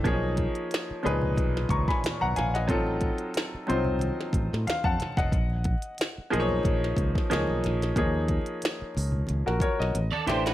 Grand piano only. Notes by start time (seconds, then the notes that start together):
0.04 F3 A#3 C#4 G#4 C#5
0.12 D#4
1.03 A#2 F3 D#4 G#4 B4
1.70 A#5 C#6
1.88 G#5 B5
2.21 F#5 A#5
2.36 F5 G#5
2.54 D#5 F#5
2.67 F#3 C4 D#4 F4 A4
3.67 F#3 C4 D#4 F4 C5
4.67 F5
4.84 F#5 A5
5.17 D#5 F#5
6.30 F3 A#3 D#4 G#4 C5
6.40 C#5
7.30 F3 A#3 D#4 G#4 C#5
7.96 F3 A#3 D#4 G#4 C#5
9.46 F#4 A#4
9.62 A#4 C#5
9.79 D#5
10.26 E3 A3 D4 G4 C5